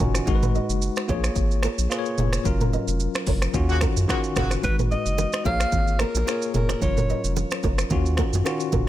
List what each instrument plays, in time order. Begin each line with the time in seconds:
Already playing: tine electric piano D#3 C#4 F4 F#4 D#5 F5 G#5
0.00 analog synth bass F#1, nylon-string guitar F#4 A#4, kick, mid tom, shaker
0.15 finger snap, cross-stick, shaker
0.26 analog synth bass G#1, tine electric piano G#3 D#4 F#4 A#4, kick, shaker
0.35 tine electric piano B4
0.43 nylon-string guitar G#4 B4, mid tom, shaker
0.55 nylon-string guitar B4 D#5, shaker
0.69 analog synth bass F#1, shaker
0.82 shaker
0.96 finger snap, cross-stick, shaker
1.08 analog synth bass A#1, tine electric piano A#3 F4 G#4 C#5, nylon-string guitar A#4 C#5, kick, shaker
1.24 finger snap, cross-stick, shaker
1.36 analog synth bass G#1, kick, shaker
1.51 shaker
1.63 nylon-string guitar F#4 A#4, finger snap, cross-stick, shaker
1.78 analog synth bass A#1, shaker
1.90 tine electric piano A#3 F4 G#4 B4, finger snap, cross-stick, shaker
1.99 tine electric piano C#5
2.06 shaker
2.18 analog synth bass F1, nylon-string guitar F4 G#4, mid tom, shaker
2.33 finger snap, cross-stick, shaker
2.44 analog synth bass F#1, tine electric piano F#3 C#4 F4 A#4, kick, shaker
2.61 nylon-string guitar F#4 A#4, mid tom, shaker
2.73 nylon-string guitar B4 D#5, shaker
2.88 analog synth bass F1, shaker
3.00 shaker
3.14 finger snap, cross-stick, shaker
3.27 analog synth bass F#1, nylon-string guitar A#4 C#5, kick, open hi-hat, shaker
3.42 finger snap, cross-stick, shaker
3.53 analog synth bass D#2, tine electric piano D#3 C#4 F4 F#4, kick, shaker
3.69 horn section C#3 F#3 A#3 F#4, shaker
3.81 nylon-string guitar F#4 A#4, finger snap, kick, cross-stick, shaker
3.97 analog synth bass F#2, shaker
4.08 horn section C#3 F#3 A#3 F#4, tine electric piano D#3 C#4 F4 F#4, finger snap, kick, cross-stick, shaker
4.24 shaker
4.36 analog synth bass F#1, horn section C#3 F#3 A#3 F#4, nylon-string guitar F#4 A#4, finger snap, kick, cross-stick, mid tom, shaker
4.51 finger snap, cross-stick, shaker
4.62 analog synth bass G#1, tine electric piano G#3 D#4 F#4 B4, alto saxophone B4, kick, low conga, shaker
4.79 nylon-string guitar G#4 B4, mid tom, shaker
4.91 nylon-string guitar B4 D#5, alto saxophone D#5, shaker
5.06 analog synth bass F#1, shaker
5.18 high bongo, low conga, shaker
5.33 finger snap, cross-stick, shaker
5.44 analog synth bass A#1, tine electric piano A#3 F4 G#4 C#5, nylon-string guitar A#4 C#5, alto saxophone F5, kick, low bongo, shaker
5.60 finger snap, cross-stick, shaker
5.72 analog synth bass G#1, kick, low conga, shaker
5.88 shaker
5.99 nylon-string guitar F#4 A#4, alto saxophone A#4, finger snap, cross-stick, shaker
6.15 analog synth bass A#1, low bongo, shaker
6.26 tine electric piano A#3 F4 G#4 C#5, finger snap, cross-stick, high bongo, shaker
6.42 shaker
6.54 analog synth bass F1, nylon-string guitar F4 G#4, alto saxophone A#4, mid tom, high bongo, shaker
6.69 finger snap, cross-stick, high bongo, low bongo, shaker
6.81 analog synth bass F#1, tine electric piano F#3 C#4 F4 A#4, alto saxophone C#5, kick, low conga, shaker
6.97 nylon-string guitar F#4 A#4, mid tom, shaker
7.10 nylon-string guitar B4 D#5, shaker
7.24 analog synth bass F1, shaker
7.36 high bongo, low conga, shaker
7.51 finger snap, cross-stick, shaker
7.63 analog synth bass F#1, nylon-string guitar A#4 C#5, kick, low bongo, shaker
7.78 finger snap, cross-stick, shaker
7.90 analog synth bass D#2, tine electric piano D#3 C#4 F4 F#4, kick, low conga, shaker
8.06 shaker
8.17 nylon-string guitar F#4 A#4, finger snap, kick, cross-stick, shaker
8.33 analog synth bass F#2, low bongo, shaker
8.44 tine electric piano D#3 C#4 F4 F#4, finger snap, cross-stick, high bongo, shaker
8.60 shaker
8.72 analog synth bass F#1, nylon-string guitar F#4 A#4, kick, mid tom, high bongo, shaker